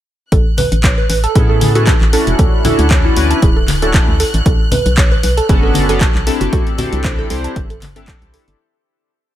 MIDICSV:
0, 0, Header, 1, 7, 480
1, 0, Start_track
1, 0, Key_signature, 3, "major"
1, 0, Tempo, 517241
1, 297, Time_signature, 4, 2, 24, 8
1, 8677, End_track
2, 0, Start_track
2, 0, Title_t, "Violin section"
2, 0, Program_c, 0, 48
2, 297, Note_on_c, 0, 90, 85
2, 7987, Note_off_c, 0, 90, 0
2, 8677, End_track
3, 0, Start_track
3, 0, Title_t, "Digital synth lead"
3, 0, Program_c, 1, 84
3, 537, Note_on_c, 1, 71, 92
3, 722, Note_off_c, 1, 71, 0
3, 907, Note_on_c, 1, 71, 87
3, 977, Note_off_c, 1, 71, 0
3, 1015, Note_on_c, 1, 71, 74
3, 1100, Note_off_c, 1, 71, 0
3, 1146, Note_on_c, 1, 69, 94
3, 1322, Note_off_c, 1, 69, 0
3, 1627, Note_on_c, 1, 66, 92
3, 1802, Note_off_c, 1, 66, 0
3, 2457, Note_on_c, 1, 64, 95
3, 2642, Note_off_c, 1, 64, 0
3, 2826, Note_on_c, 1, 64, 92
3, 3307, Note_off_c, 1, 64, 0
3, 4376, Note_on_c, 1, 71, 97
3, 4562, Note_off_c, 1, 71, 0
3, 4747, Note_on_c, 1, 71, 90
3, 4817, Note_off_c, 1, 71, 0
3, 4856, Note_on_c, 1, 71, 75
3, 4940, Note_off_c, 1, 71, 0
3, 4987, Note_on_c, 1, 69, 96
3, 5162, Note_off_c, 1, 69, 0
3, 5947, Note_on_c, 1, 66, 87
3, 6017, Note_off_c, 1, 66, 0
3, 6057, Note_on_c, 1, 66, 78
3, 6140, Note_off_c, 1, 66, 0
3, 6296, Note_on_c, 1, 66, 97
3, 6482, Note_off_c, 1, 66, 0
3, 6667, Note_on_c, 1, 69, 92
3, 6737, Note_off_c, 1, 69, 0
3, 6777, Note_on_c, 1, 69, 77
3, 6860, Note_off_c, 1, 69, 0
3, 8677, End_track
4, 0, Start_track
4, 0, Title_t, "Synth arpeggio sound"
4, 0, Program_c, 2, 84
4, 297, Note_on_c, 2, 69, 81
4, 421, Note_off_c, 2, 69, 0
4, 777, Note_on_c, 2, 73, 82
4, 901, Note_off_c, 2, 73, 0
4, 1148, Note_on_c, 2, 81, 76
4, 1218, Note_off_c, 2, 81, 0
4, 1257, Note_on_c, 2, 68, 86
4, 1307, Note_off_c, 2, 68, 0
4, 1387, Note_on_c, 2, 69, 76
4, 1457, Note_off_c, 2, 69, 0
4, 1627, Note_on_c, 2, 69, 74
4, 1669, Note_off_c, 2, 69, 0
4, 1737, Note_on_c, 2, 81, 83
4, 1787, Note_off_c, 2, 81, 0
4, 1977, Note_on_c, 2, 69, 75
4, 2101, Note_off_c, 2, 69, 0
4, 2217, Note_on_c, 2, 69, 79
4, 2341, Note_off_c, 2, 69, 0
4, 2697, Note_on_c, 2, 73, 80
4, 2821, Note_off_c, 2, 73, 0
4, 3067, Note_on_c, 2, 81, 73
4, 3138, Note_off_c, 2, 81, 0
4, 3177, Note_on_c, 2, 68, 87
4, 3227, Note_off_c, 2, 68, 0
4, 3307, Note_on_c, 2, 69, 78
4, 3378, Note_off_c, 2, 69, 0
4, 3547, Note_on_c, 2, 69, 77
4, 3590, Note_off_c, 2, 69, 0
4, 3657, Note_on_c, 2, 81, 81
4, 3707, Note_off_c, 2, 81, 0
4, 3897, Note_on_c, 2, 69, 78
4, 4021, Note_off_c, 2, 69, 0
4, 4137, Note_on_c, 2, 69, 84
4, 4261, Note_off_c, 2, 69, 0
4, 4617, Note_on_c, 2, 73, 80
4, 4741, Note_off_c, 2, 73, 0
4, 4987, Note_on_c, 2, 81, 74
4, 5058, Note_off_c, 2, 81, 0
4, 5097, Note_on_c, 2, 68, 84
4, 5147, Note_off_c, 2, 68, 0
4, 5227, Note_on_c, 2, 69, 77
4, 5297, Note_off_c, 2, 69, 0
4, 5467, Note_on_c, 2, 69, 79
4, 5509, Note_off_c, 2, 69, 0
4, 5577, Note_on_c, 2, 81, 86
4, 5627, Note_off_c, 2, 81, 0
4, 5817, Note_on_c, 2, 69, 75
4, 5941, Note_off_c, 2, 69, 0
4, 6057, Note_on_c, 2, 69, 84
4, 6181, Note_off_c, 2, 69, 0
4, 6536, Note_on_c, 2, 72, 83
4, 6661, Note_off_c, 2, 72, 0
4, 6907, Note_on_c, 2, 81, 75
4, 6977, Note_off_c, 2, 81, 0
4, 7017, Note_on_c, 2, 67, 87
4, 7067, Note_off_c, 2, 67, 0
4, 7147, Note_on_c, 2, 69, 76
4, 7217, Note_off_c, 2, 69, 0
4, 7387, Note_on_c, 2, 69, 78
4, 7429, Note_off_c, 2, 69, 0
4, 7497, Note_on_c, 2, 81, 82
4, 7547, Note_off_c, 2, 81, 0
4, 7737, Note_on_c, 2, 69, 80
4, 7861, Note_off_c, 2, 69, 0
4, 8677, End_track
5, 0, Start_track
5, 0, Title_t, "Analog polysynth"
5, 0, Program_c, 3, 90
5, 1255, Note_on_c, 3, 59, 94
5, 1256, Note_on_c, 3, 61, 85
5, 1257, Note_on_c, 3, 64, 87
5, 1258, Note_on_c, 3, 68, 85
5, 1259, Note_on_c, 3, 69, 107
5, 1595, Note_off_c, 3, 59, 0
5, 1596, Note_off_c, 3, 61, 0
5, 1596, Note_off_c, 3, 64, 0
5, 1596, Note_off_c, 3, 68, 0
5, 1597, Note_off_c, 3, 69, 0
5, 1625, Note_on_c, 3, 59, 94
5, 1626, Note_on_c, 3, 61, 84
5, 1627, Note_on_c, 3, 64, 84
5, 1628, Note_on_c, 3, 68, 87
5, 1629, Note_on_c, 3, 69, 100
5, 1778, Note_off_c, 3, 59, 0
5, 1778, Note_off_c, 3, 61, 0
5, 1779, Note_off_c, 3, 64, 0
5, 1779, Note_off_c, 3, 68, 0
5, 1780, Note_off_c, 3, 69, 0
5, 1975, Note_on_c, 3, 61, 87
5, 1976, Note_on_c, 3, 62, 79
5, 1977, Note_on_c, 3, 64, 80
5, 1978, Note_on_c, 3, 66, 80
5, 1979, Note_on_c, 3, 69, 93
5, 2430, Note_off_c, 3, 61, 0
5, 2430, Note_off_c, 3, 62, 0
5, 2430, Note_off_c, 3, 64, 0
5, 2431, Note_off_c, 3, 66, 0
5, 2431, Note_off_c, 3, 69, 0
5, 2455, Note_on_c, 3, 61, 88
5, 2456, Note_on_c, 3, 62, 82
5, 2457, Note_on_c, 3, 64, 82
5, 2458, Note_on_c, 3, 66, 82
5, 2458, Note_on_c, 3, 69, 101
5, 2663, Note_off_c, 3, 61, 0
5, 2663, Note_off_c, 3, 62, 0
5, 2664, Note_off_c, 3, 64, 0
5, 2664, Note_off_c, 3, 66, 0
5, 2665, Note_off_c, 3, 69, 0
5, 2695, Note_on_c, 3, 61, 91
5, 2696, Note_on_c, 3, 62, 81
5, 2697, Note_on_c, 3, 64, 85
5, 2698, Note_on_c, 3, 66, 82
5, 2698, Note_on_c, 3, 69, 100
5, 2909, Note_off_c, 3, 61, 0
5, 2910, Note_off_c, 3, 62, 0
5, 2910, Note_off_c, 3, 64, 0
5, 2911, Note_off_c, 3, 66, 0
5, 2911, Note_off_c, 3, 69, 0
5, 2935, Note_on_c, 3, 61, 93
5, 2936, Note_on_c, 3, 62, 84
5, 2937, Note_on_c, 3, 64, 83
5, 2938, Note_on_c, 3, 66, 84
5, 2939, Note_on_c, 3, 71, 99
5, 3191, Note_off_c, 3, 61, 0
5, 3192, Note_off_c, 3, 62, 0
5, 3192, Note_off_c, 3, 64, 0
5, 3193, Note_off_c, 3, 66, 0
5, 3193, Note_off_c, 3, 71, 0
5, 3545, Note_on_c, 3, 61, 72
5, 3546, Note_on_c, 3, 62, 67
5, 3547, Note_on_c, 3, 64, 64
5, 3548, Note_on_c, 3, 66, 65
5, 3549, Note_on_c, 3, 69, 77
5, 3799, Note_off_c, 3, 61, 0
5, 3800, Note_off_c, 3, 62, 0
5, 3800, Note_off_c, 3, 64, 0
5, 3800, Note_off_c, 3, 66, 0
5, 3801, Note_off_c, 3, 69, 0
5, 5095, Note_on_c, 3, 59, 97
5, 5096, Note_on_c, 3, 61, 86
5, 5097, Note_on_c, 3, 62, 90
5, 5098, Note_on_c, 3, 66, 91
5, 5099, Note_on_c, 3, 69, 105
5, 5435, Note_off_c, 3, 59, 0
5, 5435, Note_off_c, 3, 61, 0
5, 5436, Note_off_c, 3, 62, 0
5, 5436, Note_off_c, 3, 66, 0
5, 5437, Note_off_c, 3, 69, 0
5, 5465, Note_on_c, 3, 59, 93
5, 5466, Note_on_c, 3, 61, 86
5, 5467, Note_on_c, 3, 62, 87
5, 5468, Note_on_c, 3, 66, 85
5, 5469, Note_on_c, 3, 69, 106
5, 5618, Note_off_c, 3, 59, 0
5, 5618, Note_off_c, 3, 61, 0
5, 5619, Note_off_c, 3, 62, 0
5, 5619, Note_off_c, 3, 66, 0
5, 5620, Note_off_c, 3, 69, 0
5, 5815, Note_on_c, 3, 60, 90
5, 5816, Note_on_c, 3, 62, 81
5, 5817, Note_on_c, 3, 64, 79
5, 5818, Note_on_c, 3, 67, 81
5, 5819, Note_on_c, 3, 69, 101
5, 6270, Note_off_c, 3, 60, 0
5, 6270, Note_off_c, 3, 62, 0
5, 6271, Note_off_c, 3, 64, 0
5, 6271, Note_off_c, 3, 67, 0
5, 6272, Note_off_c, 3, 69, 0
5, 6295, Note_on_c, 3, 60, 94
5, 6296, Note_on_c, 3, 62, 82
5, 6297, Note_on_c, 3, 64, 84
5, 6298, Note_on_c, 3, 67, 84
5, 6299, Note_on_c, 3, 69, 99
5, 6503, Note_off_c, 3, 60, 0
5, 6504, Note_off_c, 3, 62, 0
5, 6504, Note_off_c, 3, 64, 0
5, 6504, Note_off_c, 3, 67, 0
5, 6505, Note_off_c, 3, 69, 0
5, 6535, Note_on_c, 3, 60, 90
5, 6536, Note_on_c, 3, 62, 83
5, 6537, Note_on_c, 3, 64, 85
5, 6538, Note_on_c, 3, 67, 83
5, 6539, Note_on_c, 3, 69, 98
5, 6750, Note_off_c, 3, 60, 0
5, 6750, Note_off_c, 3, 62, 0
5, 6751, Note_off_c, 3, 64, 0
5, 6751, Note_off_c, 3, 67, 0
5, 6751, Note_off_c, 3, 69, 0
5, 6774, Note_on_c, 3, 60, 93
5, 6775, Note_on_c, 3, 62, 84
5, 6776, Note_on_c, 3, 64, 85
5, 6777, Note_on_c, 3, 67, 85
5, 6778, Note_on_c, 3, 72, 102
5, 7031, Note_off_c, 3, 60, 0
5, 7031, Note_off_c, 3, 62, 0
5, 7032, Note_off_c, 3, 64, 0
5, 7032, Note_off_c, 3, 67, 0
5, 7033, Note_off_c, 3, 72, 0
5, 7383, Note_on_c, 3, 60, 80
5, 7385, Note_on_c, 3, 62, 77
5, 7387, Note_on_c, 3, 64, 76
5, 7388, Note_on_c, 3, 67, 75
5, 7390, Note_on_c, 3, 69, 91
5, 7962, Note_off_c, 3, 60, 0
5, 7963, Note_off_c, 3, 62, 0
5, 7963, Note_off_c, 3, 64, 0
5, 7964, Note_off_c, 3, 67, 0
5, 7965, Note_off_c, 3, 69, 0
5, 8677, End_track
6, 0, Start_track
6, 0, Title_t, "FM bass"
6, 0, Program_c, 4, 39
6, 297, Note_on_c, 4, 33, 96
6, 379, Note_off_c, 4, 33, 0
6, 667, Note_on_c, 4, 33, 98
6, 951, Note_off_c, 4, 33, 0
6, 1017, Note_on_c, 4, 33, 92
6, 1175, Note_off_c, 4, 33, 0
6, 1257, Note_on_c, 4, 45, 95
6, 1789, Note_off_c, 4, 45, 0
6, 1868, Note_on_c, 4, 33, 98
6, 2010, Note_off_c, 4, 33, 0
6, 2108, Note_on_c, 4, 28, 99
6, 2176, Note_off_c, 4, 28, 0
6, 2217, Note_on_c, 4, 38, 95
6, 2299, Note_off_c, 4, 38, 0
6, 2587, Note_on_c, 4, 38, 102
6, 2871, Note_off_c, 4, 38, 0
6, 2937, Note_on_c, 4, 38, 89
6, 3095, Note_off_c, 4, 38, 0
6, 3177, Note_on_c, 4, 26, 96
6, 3709, Note_off_c, 4, 26, 0
6, 3787, Note_on_c, 4, 38, 95
6, 3930, Note_off_c, 4, 38, 0
6, 4028, Note_on_c, 4, 33, 100
6, 4096, Note_off_c, 4, 33, 0
6, 4137, Note_on_c, 4, 35, 98
6, 4219, Note_off_c, 4, 35, 0
6, 4508, Note_on_c, 4, 35, 97
6, 4792, Note_off_c, 4, 35, 0
6, 4857, Note_on_c, 4, 35, 91
6, 5015, Note_off_c, 4, 35, 0
6, 5097, Note_on_c, 4, 30, 96
6, 5629, Note_off_c, 4, 30, 0
6, 5707, Note_on_c, 4, 35, 99
6, 5850, Note_off_c, 4, 35, 0
6, 5947, Note_on_c, 4, 30, 101
6, 6016, Note_off_c, 4, 30, 0
6, 6057, Note_on_c, 4, 36, 98
6, 6139, Note_off_c, 4, 36, 0
6, 6428, Note_on_c, 4, 36, 99
6, 6711, Note_off_c, 4, 36, 0
6, 6777, Note_on_c, 4, 36, 94
6, 6935, Note_off_c, 4, 36, 0
6, 7017, Note_on_c, 4, 31, 99
6, 7549, Note_off_c, 4, 31, 0
6, 7627, Note_on_c, 4, 36, 102
6, 7770, Note_off_c, 4, 36, 0
6, 7867, Note_on_c, 4, 31, 101
6, 7936, Note_off_c, 4, 31, 0
6, 8677, End_track
7, 0, Start_track
7, 0, Title_t, "Drums"
7, 297, Note_on_c, 9, 36, 115
7, 297, Note_on_c, 9, 42, 66
7, 390, Note_off_c, 9, 36, 0
7, 390, Note_off_c, 9, 42, 0
7, 532, Note_on_c, 9, 63, 62
7, 537, Note_on_c, 9, 46, 97
7, 537, Note_on_c, 9, 64, 86
7, 625, Note_off_c, 9, 63, 0
7, 629, Note_off_c, 9, 46, 0
7, 630, Note_off_c, 9, 64, 0
7, 668, Note_on_c, 9, 42, 54
7, 760, Note_off_c, 9, 42, 0
7, 777, Note_on_c, 9, 36, 111
7, 777, Note_on_c, 9, 39, 116
7, 777, Note_on_c, 9, 42, 66
7, 869, Note_off_c, 9, 39, 0
7, 870, Note_off_c, 9, 36, 0
7, 870, Note_off_c, 9, 42, 0
7, 1017, Note_on_c, 9, 46, 105
7, 1110, Note_off_c, 9, 46, 0
7, 1148, Note_on_c, 9, 42, 51
7, 1240, Note_off_c, 9, 42, 0
7, 1257, Note_on_c, 9, 36, 110
7, 1257, Note_on_c, 9, 42, 69
7, 1350, Note_off_c, 9, 36, 0
7, 1350, Note_off_c, 9, 42, 0
7, 1496, Note_on_c, 9, 63, 85
7, 1497, Note_on_c, 9, 46, 106
7, 1589, Note_off_c, 9, 63, 0
7, 1590, Note_off_c, 9, 46, 0
7, 1628, Note_on_c, 9, 42, 52
7, 1720, Note_off_c, 9, 42, 0
7, 1737, Note_on_c, 9, 36, 115
7, 1737, Note_on_c, 9, 39, 121
7, 1737, Note_on_c, 9, 42, 64
7, 1829, Note_off_c, 9, 39, 0
7, 1830, Note_off_c, 9, 36, 0
7, 1830, Note_off_c, 9, 42, 0
7, 1867, Note_on_c, 9, 39, 36
7, 1960, Note_off_c, 9, 39, 0
7, 1977, Note_on_c, 9, 46, 105
7, 2070, Note_off_c, 9, 46, 0
7, 2107, Note_on_c, 9, 42, 54
7, 2200, Note_off_c, 9, 42, 0
7, 2217, Note_on_c, 9, 36, 120
7, 2217, Note_on_c, 9, 42, 64
7, 2310, Note_off_c, 9, 36, 0
7, 2310, Note_off_c, 9, 42, 0
7, 2455, Note_on_c, 9, 64, 99
7, 2457, Note_on_c, 9, 46, 100
7, 2457, Note_on_c, 9, 63, 57
7, 2548, Note_off_c, 9, 64, 0
7, 2550, Note_off_c, 9, 46, 0
7, 2550, Note_off_c, 9, 63, 0
7, 2587, Note_on_c, 9, 42, 52
7, 2680, Note_off_c, 9, 42, 0
7, 2696, Note_on_c, 9, 39, 118
7, 2697, Note_on_c, 9, 36, 122
7, 2697, Note_on_c, 9, 42, 67
7, 2789, Note_off_c, 9, 39, 0
7, 2790, Note_off_c, 9, 36, 0
7, 2790, Note_off_c, 9, 42, 0
7, 2937, Note_on_c, 9, 46, 112
7, 3030, Note_off_c, 9, 46, 0
7, 3068, Note_on_c, 9, 42, 51
7, 3160, Note_off_c, 9, 42, 0
7, 3177, Note_on_c, 9, 36, 114
7, 3177, Note_on_c, 9, 42, 68
7, 3270, Note_off_c, 9, 36, 0
7, 3270, Note_off_c, 9, 42, 0
7, 3413, Note_on_c, 9, 63, 81
7, 3417, Note_on_c, 9, 39, 39
7, 3417, Note_on_c, 9, 46, 109
7, 3506, Note_off_c, 9, 63, 0
7, 3509, Note_off_c, 9, 39, 0
7, 3510, Note_off_c, 9, 46, 0
7, 3547, Note_on_c, 9, 42, 50
7, 3640, Note_off_c, 9, 42, 0
7, 3657, Note_on_c, 9, 36, 113
7, 3657, Note_on_c, 9, 39, 119
7, 3657, Note_on_c, 9, 42, 62
7, 3749, Note_off_c, 9, 39, 0
7, 3750, Note_off_c, 9, 36, 0
7, 3750, Note_off_c, 9, 42, 0
7, 3897, Note_on_c, 9, 46, 105
7, 3990, Note_off_c, 9, 46, 0
7, 4028, Note_on_c, 9, 42, 52
7, 4120, Note_off_c, 9, 42, 0
7, 4137, Note_on_c, 9, 36, 123
7, 4137, Note_on_c, 9, 42, 65
7, 4230, Note_off_c, 9, 36, 0
7, 4230, Note_off_c, 9, 42, 0
7, 4375, Note_on_c, 9, 63, 60
7, 4375, Note_on_c, 9, 64, 97
7, 4377, Note_on_c, 9, 46, 109
7, 4468, Note_off_c, 9, 63, 0
7, 4468, Note_off_c, 9, 64, 0
7, 4470, Note_off_c, 9, 46, 0
7, 4508, Note_on_c, 9, 42, 51
7, 4601, Note_off_c, 9, 42, 0
7, 4617, Note_on_c, 9, 36, 124
7, 4617, Note_on_c, 9, 39, 124
7, 4617, Note_on_c, 9, 42, 63
7, 4710, Note_off_c, 9, 36, 0
7, 4710, Note_off_c, 9, 39, 0
7, 4710, Note_off_c, 9, 42, 0
7, 4857, Note_on_c, 9, 46, 110
7, 4950, Note_off_c, 9, 46, 0
7, 4988, Note_on_c, 9, 42, 50
7, 5081, Note_off_c, 9, 42, 0
7, 5097, Note_on_c, 9, 36, 116
7, 5098, Note_on_c, 9, 42, 66
7, 5190, Note_off_c, 9, 36, 0
7, 5190, Note_off_c, 9, 42, 0
7, 5328, Note_on_c, 9, 63, 87
7, 5337, Note_on_c, 9, 46, 110
7, 5421, Note_off_c, 9, 63, 0
7, 5430, Note_off_c, 9, 46, 0
7, 5468, Note_on_c, 9, 42, 50
7, 5560, Note_off_c, 9, 42, 0
7, 5577, Note_on_c, 9, 36, 121
7, 5577, Note_on_c, 9, 39, 116
7, 5577, Note_on_c, 9, 42, 63
7, 5669, Note_off_c, 9, 39, 0
7, 5670, Note_off_c, 9, 36, 0
7, 5670, Note_off_c, 9, 42, 0
7, 5707, Note_on_c, 9, 39, 37
7, 5800, Note_off_c, 9, 39, 0
7, 5817, Note_on_c, 9, 46, 112
7, 5910, Note_off_c, 9, 46, 0
7, 5947, Note_on_c, 9, 42, 52
7, 6040, Note_off_c, 9, 42, 0
7, 6057, Note_on_c, 9, 36, 121
7, 6057, Note_on_c, 9, 42, 62
7, 6150, Note_off_c, 9, 36, 0
7, 6150, Note_off_c, 9, 42, 0
7, 6187, Note_on_c, 9, 42, 34
7, 6280, Note_off_c, 9, 42, 0
7, 6292, Note_on_c, 9, 64, 96
7, 6294, Note_on_c, 9, 63, 58
7, 6296, Note_on_c, 9, 46, 107
7, 6385, Note_off_c, 9, 64, 0
7, 6387, Note_off_c, 9, 63, 0
7, 6389, Note_off_c, 9, 46, 0
7, 6427, Note_on_c, 9, 42, 49
7, 6520, Note_off_c, 9, 42, 0
7, 6536, Note_on_c, 9, 39, 118
7, 6537, Note_on_c, 9, 36, 124
7, 6537, Note_on_c, 9, 42, 62
7, 6629, Note_off_c, 9, 39, 0
7, 6629, Note_off_c, 9, 42, 0
7, 6630, Note_off_c, 9, 36, 0
7, 6776, Note_on_c, 9, 46, 109
7, 6869, Note_off_c, 9, 46, 0
7, 6907, Note_on_c, 9, 42, 51
7, 7000, Note_off_c, 9, 42, 0
7, 7017, Note_on_c, 9, 36, 123
7, 7017, Note_on_c, 9, 42, 65
7, 7110, Note_off_c, 9, 36, 0
7, 7110, Note_off_c, 9, 42, 0
7, 7147, Note_on_c, 9, 42, 34
7, 7240, Note_off_c, 9, 42, 0
7, 7257, Note_on_c, 9, 39, 37
7, 7257, Note_on_c, 9, 46, 112
7, 7258, Note_on_c, 9, 63, 91
7, 7349, Note_off_c, 9, 39, 0
7, 7350, Note_off_c, 9, 46, 0
7, 7351, Note_off_c, 9, 63, 0
7, 7387, Note_on_c, 9, 42, 51
7, 7480, Note_off_c, 9, 42, 0
7, 7496, Note_on_c, 9, 39, 115
7, 7497, Note_on_c, 9, 36, 122
7, 7497, Note_on_c, 9, 42, 61
7, 7589, Note_off_c, 9, 39, 0
7, 7590, Note_off_c, 9, 36, 0
7, 7590, Note_off_c, 9, 42, 0
7, 7628, Note_on_c, 9, 42, 35
7, 7720, Note_off_c, 9, 42, 0
7, 7737, Note_on_c, 9, 46, 109
7, 7830, Note_off_c, 9, 46, 0
7, 7867, Note_on_c, 9, 42, 52
7, 7960, Note_off_c, 9, 42, 0
7, 8677, End_track
0, 0, End_of_file